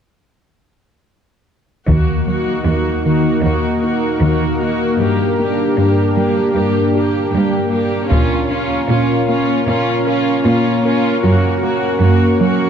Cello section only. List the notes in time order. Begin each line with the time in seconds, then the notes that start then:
1.88 D#2
2.66 D#2
3.44 D#2
4.22 D#2
5.00 G2
5.77 G2
6.55 G2
7.34 G2
8.12 A#2
8.90 A#2
9.68 A#2
10.46 A#2
11.24 F#2
12.02 F#2